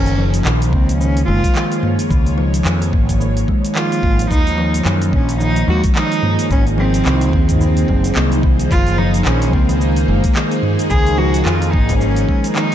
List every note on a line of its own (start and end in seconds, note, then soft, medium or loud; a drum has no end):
0.00 0.41 F#1 medium
0.00 2.09 F3 medium
0.00 4.31 A#3 medium
0.00 0.41 C#4 loud
0.00 4.31 D#4 medium
0.00 4.31 G#4 medium
0.06 open hi-hat soft
0.06 shaker soft
0.18 0.33 F3 loud
0.34 open hi-hat medium
0.34 shaker medium
0.45 0.73 A#1 medium
0.45 0.61 D#3 medium
0.45 clap loud
0.45 shaker medium
0.62 open hi-hat soft
0.62 shaker soft
0.72 1.23 C#2 medium
0.72 0.99 A#3 medium
0.72 0.98 C4 medium
0.72 kick loud
0.89 6.50 C#5 medium
0.89 open hi-hat medium
0.89 shaker medium
0.99 1.16 D#3 medium
0.99 1.25 C#4 loud
0.99 shaker medium
1.17 open hi-hat soft
1.17 shaker soft
1.26 1.40 F#1 loud
1.26 1.54 G#3 medium
1.26 1.78 F4 loud
1.44 kick loud
1.44 open hi-hat medium
1.44 shaker medium
1.55 1.71 D#3 medium
1.55 clap loud
1.55 shaker soft
1.72 open hi-hat soft
1.72 shaker soft
1.83 2.09 A#3 medium
1.83 mid tom medium
1.99 open hi-hat medium
1.99 shaker medium
2.10 2.61 C#2 medium
2.10 2.26 D#3 medium
2.10 12.75 F3 medium
2.10 kick loud
2.10 shaker medium
2.26 open hi-hat soft
2.26 shaker soft
2.38 2.53 F3 loud
2.54 open hi-hat medium
2.54 shaker medium
2.65 2.95 F2 medium
2.65 2.81 D#3 medium
2.65 clap loud
2.65 shaker medium
2.82 open hi-hat soft
2.82 shaker soft
2.93 3.43 G#1 medium
2.93 3.19 A#3 medium
2.93 kick loud
3.09 kick medium
3.09 open hi-hat medium
3.09 shaker medium
3.20 3.36 D#3 medium
3.20 shaker medium
3.37 open hi-hat soft
3.37 shaker soft
3.48 3.75 G#3 medium
3.48 kick medium
3.65 open hi-hat medium
3.65 shaker medium
3.75 3.91 D#3 medium
3.75 4.27 F4 loud
3.75 clap loud
3.75 shaker medium
3.92 open hi-hat soft
3.92 shaker soft
4.03 4.25 G#1 loud
4.03 4.30 A#3 medium
4.03 kick loud
4.19 open hi-hat medium
4.19 shaker medium
4.31 4.81 D#2 loud
4.31 4.46 D#3 medium
4.31 4.82 D#4 loud
4.31 kick loud
4.31 shaker medium
4.47 12.75 D#4 medium
4.47 open hi-hat soft
4.47 shaker soft
4.58 4.73 F3 loud
4.66 12.75 A#3 medium
4.74 open hi-hat medium
4.74 shaker medium
4.85 5.15 F#2 medium
4.85 5.01 D#3 medium
4.85 clap loud
4.85 shaker medium
5.02 open hi-hat soft
5.02 shaker soft
5.13 5.64 A#1 loud
5.13 5.39 A#3 medium
5.13 5.39 C#4 medium
5.13 kick loud
5.29 12.75 G#4 medium
5.29 open hi-hat medium
5.29 shaker medium
5.40 5.56 D#3 medium
5.40 5.67 D#4 loud
5.40 shaker medium
5.56 open hi-hat soft
5.56 shaker soft
5.68 5.80 D#2 loud
5.68 5.95 G#3 medium
5.68 5.81 F#4 loud
5.84 kick loud
5.84 open hi-hat medium
5.84 shaker medium
5.96 6.11 D#3 medium
5.96 6.47 D#4 loud
5.96 clap medium
5.96 shaker medium
6.12 open hi-hat soft
6.12 shaker soft
6.23 6.50 A#3 medium
6.23 mid tom medium
6.39 open hi-hat medium
6.39 shaker medium
6.51 7.01 G#1 loud
6.51 6.66 D#3 medium
6.51 6.64 C#4 loud
6.51 kick loud
6.51 shaker medium
6.67 open hi-hat soft
6.67 shaker soft
6.78 6.93 F3 loud
6.78 7.57 C4 loud
6.94 open hi-hat medium
6.94 shaker medium
7.06 7.33 C2 medium
7.06 7.21 D#3 medium
7.06 clap medium
7.06 shaker medium
7.11 12.75 C5 medium
7.21 open hi-hat soft
7.21 shaker soft
7.33 7.84 D#2 medium
7.33 7.60 A#3 medium
7.33 kick loud
7.49 kick medium
7.49 mid tom medium
7.49 open hi-hat medium
7.49 shaker medium
7.61 7.76 D#3 medium
7.61 8.40 C4 medium
7.61 shaker medium
7.77 open hi-hat soft
7.77 shaker soft
7.88 8.10 F#1 loud
7.88 8.04 F#3 loud
7.88 kick medium
8.04 open hi-hat medium
8.04 shaker medium
8.15 8.66 C2 medium
8.15 8.25 A#3 medium
8.15 clap medium
8.15 shaker medium
8.32 open hi-hat soft
8.32 shaker soft
8.43 8.59 D#3 medium
8.43 kick loud
8.59 open hi-hat medium
8.59 shaker medium
8.71 9.21 F#1 medium
8.71 8.86 D#3 medium
8.71 9.00 F4 loud
8.71 kick loud
8.71 shaker medium
8.87 open hi-hat soft
8.87 shaker soft
8.98 9.14 F3 loud
8.98 9.25 D#4 loud
9.14 open hi-hat medium
9.14 shaker medium
9.25 9.54 A#1 medium
9.25 9.41 D#3 medium
9.25 9.55 C#4 loud
9.25 clap medium
9.25 shaker medium
9.42 open hi-hat soft
9.42 shaker soft
9.53 10.04 C#2 medium
9.53 9.68 A#3 medium
9.53 9.82 C4 medium
9.53 kick loud
9.69 9.79 D#3 loud
9.69 open hi-hat medium
9.69 shaker medium
9.80 9.96 D#3 medium
9.80 10.63 A#3 medium
9.80 shaker medium
9.96 open hi-hat soft
9.96 shaker soft
10.08 10.20 F#1 loud
10.08 10.35 G#3 medium
10.24 kick loud
10.24 open hi-hat medium
10.24 shaker medium
10.35 10.51 D#3 medium
10.35 clap medium
10.35 shaker medium
10.51 open hi-hat soft
10.51 shaker soft
10.63 10.90 A#3 medium
10.63 mid tom medium
10.79 open hi-hat medium
10.79 shaker medium
10.91 11.42 C#2 medium
10.91 11.06 D#3 medium
10.91 11.19 G#4 loud
10.91 kick loud
10.91 shaker medium
11.07 open hi-hat soft
11.07 shaker soft
11.18 11.34 F3 loud
11.18 11.46 F#4 loud
11.34 open hi-hat medium
11.34 shaker medium
11.45 11.75 F2 medium
11.45 11.61 D#3 medium
11.45 11.74 F4 loud
11.45 clap loud
11.45 shaker medium
11.62 open hi-hat soft
11.62 shaker soft
11.72 12.24 G#1 loud
11.72 11.88 A#3 medium
11.72 11.99 D#4 medium
11.72 kick loud
11.89 12.00 D#3 loud
11.89 kick medium
11.89 open hi-hat medium
11.89 shaker medium
12.00 12.16 D#3 medium
12.00 12.52 C#4 loud
12.00 shaker medium
12.16 open hi-hat soft
12.16 shaker soft
12.29 12.55 G#3 medium
12.29 kick medium
12.44 open hi-hat medium
12.44 shaker medium
12.55 12.71 D#3 medium
12.55 12.75 D#4 loud
12.55 clap medium
12.55 shaker soft